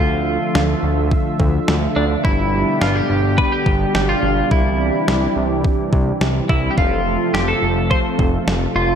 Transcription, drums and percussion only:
0.55 snare loud
1.11 kick medium
1.40 kick medium
1.68 snare loud
2.25 kick loud
2.82 snare loud
3.38 kick medium
3.66 kick medium
3.95 snare loud
4.51 kick loud
5.08 snare loud
5.65 kick medium
5.93 kick medium
6.21 snare loud
6.49 kick medium
6.78 kick loud
7.35 snare loud
7.91 kick medium
8.19 kick medium
8.48 snare loud

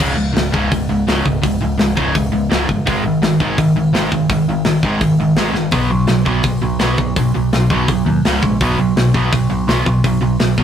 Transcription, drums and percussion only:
0.00 crash loud
0.36 snare loud
0.36 open hi-hat medium
0.54 kick medium
0.72 kick loud
0.72 open hi-hat medium
1.08 snare loud
1.08 open hi-hat medium
1.26 kick medium
1.43 kick loud
1.43 open hi-hat medium
1.79 snare medium
1.79 open hi-hat medium
1.97 kick medium
2.15 kick loud
2.15 open hi-hat medium
2.51 snare loud
2.51 open hi-hat medium
2.69 kick medium
2.87 kick loud
2.87 open hi-hat soft
3.23 snare loud
3.23 open hi-hat medium
3.40 kick medium
3.58 kick loud
3.58 open hi-hat medium
3.95 snare loud
3.95 open hi-hat soft
4.12 kick medium
4.30 kick loud
4.30 open hi-hat medium
4.65 snare loud
4.65 open hi-hat medium
4.83 kick medium
5.01 kick loud
5.01 open hi-hat medium
5.36 snare loud
5.36 open hi-hat medium
5.55 snare medium
5.71 kick loud
5.71 open hi-hat medium
6.07 snare medium
6.07 open hi-hat medium
6.26 kick medium
6.43 kick loud
6.43 open hi-hat medium
6.79 snare loud
6.79 open hi-hat medium
6.98 kick medium
7.16 kick loud
7.16 open hi-hat medium
7.53 snare loud
7.53 open hi-hat medium
7.70 kick medium
7.88 kick loud
7.88 open hi-hat medium
8.25 snare loud
8.25 open hi-hat medium
8.43 kick medium
8.61 kick loud
8.61 open hi-hat medium
8.97 snare loud
8.97 open hi-hat medium
9.14 kick medium
9.33 kick loud
9.33 open hi-hat medium
9.69 snare loud
9.69 open hi-hat medium
9.86 kick medium
10.04 kick loud
10.04 open hi-hat medium
10.40 snare loud
10.40 open hi-hat medium
10.58 kick medium

